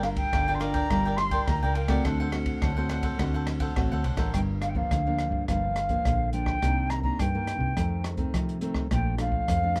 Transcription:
Already playing: G1 G3
0.03 D4 F4 A#4 F5, muted cavaquinho stroke, cross-stick, ride
0.16 G5, kick, ride
0.33 G1 D3 F4 A#4 D5 G5, kick, cross-stick, ride
0.48 D4 F4 A#4 D5 G5
0.55 C6
0.60 F4 A#4 D5 G5 A#5, cross-stick, ride
0.74 A#4 D5 G5, kick, ride
0.90 G1 G3 D4 F4 A#4 D5 G5, kick, cross-stick, ride
1.05 A#4 D5 G5
1.17 C6, muted cavaquinho stroke, cross-stick, ride
1.31 A#4 D5 G5, kick, ride
1.47 D2 D4 F4 A#4 A#5, kick, cross-stick, ride
1.63 C#2 A#4 D5 G5
1.74 F4 A#4 D5 G5, ride
1.88 A3 C4 F#4 A#4 D5 F#5 G5, kick, cross-stick, ride
2.05 D2 D3 D4 A4 C5 F#5, kick, cross-stick, ride
2.20 A4 C5 F#5
2.32 A3 C4 F#4, muted cavaquinho stroke, cross-stick, ride
2.46 kick, ride
2.62 D2 A2 D4 A4 C5 F#5, kick, cross-stick, ride
2.77 A3 C4 F#4 A4 C5 F#5
2.89 D4 A4 C5 F#5, cross-stick, ride
3.02 A4 C5 F#5, kick, ride
3.19 D2 D3 A3 C4 D4 F#4 A4 C5 F#5, kick, cross-stick, ride
3.34 A4 C5 F#5
3.47 muted cavaquinho stroke, cross-stick, ride
3.60 A4 C5 F#5, kick, ride
3.76 A1 A2 A3 C4 F#4, kick, cross-stick, ride
3.92 D2 A4 C5 F#5
4.04 C2 D4 A4 C5 F#5, ride
4.15 A1 D4 F4 A4 A#4 C5 F#5, kick, cross-stick, ride
4.34 G1 G2 G5, kick, cross-stick, closed hi-hat
4.61 F5, cross-stick, closed hi-hat
4.70 G5
4.75 F3 A#3 D4 F5, kick
4.91 D2 D3, kick, cross-stick, closed hi-hat
5.06 F3 A#3 D4
5.19 cross-stick, closed hi-hat
5.30 G2, kick
5.47 G1 G2 F3 A#3 D4 F5, kick, cross-stick, closed hi-hat
5.76 cross-stick, closed hi-hat
5.89 F3 A#3 D4, kick, closed hi-hat
6.05 A#1 D3, kick, cross-stick, closed hi-hat
6.32 F3 A#3 D4 G5, closed hi-hat
6.46 kick, cross-stick
6.62 C2 C3 D#3 A#3 D4, kick, cross-stick, closed hi-hat
6.90 A#5, cross-stick, closed hi-hat
7.03 D#3 A#3 D4 A#5, kick
7.19 G2 G5, kick, cross-stick, closed hi-hat
7.35 D#3 A#3 D4
7.47 cross-stick, closed hi-hat
7.59 C3, kick
7.76 F2 D#3 A3 C4, kick, cross-stick, closed hi-hat
8.04 cross-stick, closed hi-hat
8.17 D#3 A3 C4, kick, closed hi-hat
8.34 C3 F3, kick, cross-stick, closed hi-hat
8.49 closed hi-hat
8.61 D#3 A3 C4, closed hi-hat
8.74 kick, cross-stick
8.91 A#1 A#2 F3 A3 D4 G5, kick, cross-stick, closed hi-hat
9.18 F3 A3 D4 F5, cross-stick, closed hi-hat
9.32 kick
9.48 F2, kick, cross-stick, closed hi-hat
9.63 F3 A3 D4
9.76 cross-stick, closed hi-hat

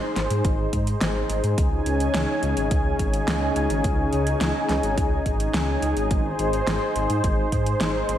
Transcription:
Already playing: D#4 G#4 C5
0.16 G#1, snare, closed hi-hat
0.30 G#2, closed hi-hat
0.45 G#1, kick, closed hi-hat
0.73 G#2, kick, closed hi-hat
0.87 closed hi-hat
1.01 G#1, snare, closed hi-hat
1.30 G#1, closed hi-hat
1.44 G#2, closed hi-hat
1.58 C#2 C#3 C#4 G#5, kick, closed hi-hat
1.86 C#2, closed hi-hat
2.00 closed hi-hat
2.14 C#2, snare, closed hi-hat
2.43 C#2, closed hi-hat
2.57 G#1, closed hi-hat
2.71 C#2, kick, closed hi-hat
2.99 G#1, kick, closed hi-hat
3.14 closed hi-hat
3.28 C#2, snare, closed hi-hat
3.56 C#2, closed hi-hat
3.70 G#1, closed hi-hat
3.84 C#2, kick, closed hi-hat
4.13 C#2, closed hi-hat
4.27 closed hi-hat
4.41 C#2, snare, closed hi-hat
4.69 C#2, snare, closed hi-hat
4.83 G#1, closed hi-hat
4.98 C#2, kick, closed hi-hat
5.26 G#1, kick, closed hi-hat
5.40 closed hi-hat
5.54 C#2, snare, closed hi-hat
5.82 C#2, closed hi-hat
5.97 G#1, closed hi-hat
6.11 G#1 C5, kick, closed hi-hat
6.39 G#1, closed hi-hat
6.53 closed hi-hat
6.67 G#1, snare, closed hi-hat
6.96 G#1, closed hi-hat
7.10 G#2, closed hi-hat
7.24 G#1, kick, closed hi-hat
7.52 G#2, kick, closed hi-hat
7.66 closed hi-hat
7.81 G#1, snare, closed hi-hat
8.09 G#1, closed hi-hat

